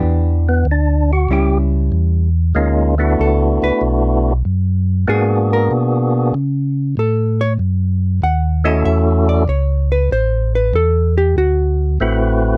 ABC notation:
X:1
M:4/4
L:1/8
Q:"Swing" 1/4=95
K:D
V:1 name="Hollow-body jazz guitar"
[E,B,DG]2 z2 [G,CE]3 z | z2 A B z4 | ^G _B z4 A c | z2 f _e =e d c B |
=c B A G F2 z2 |]
V:2 name="Tonewheel organ"
z B, D F G z3 | [^G,_B,C_E=F] [A,=B,D=E^F]4 z3 | [_B,=B,DF^G]4 z4 | z3 [A,CEFA]3 z2 |
z6 [A,=CEFB]2 |]
V:3 name="Tonewheel organ" clef=bass
E,,2 D,,2 C,,2 E,,2 | D,,2 C,, C,, B,,,2 F,,2 | ^G,,2 B,,2 C,2 A,,2 | F,,2 _E,,2 =E,,2 C,,2 |
A,,,2 E,,2 D,,2 A,,,2 |]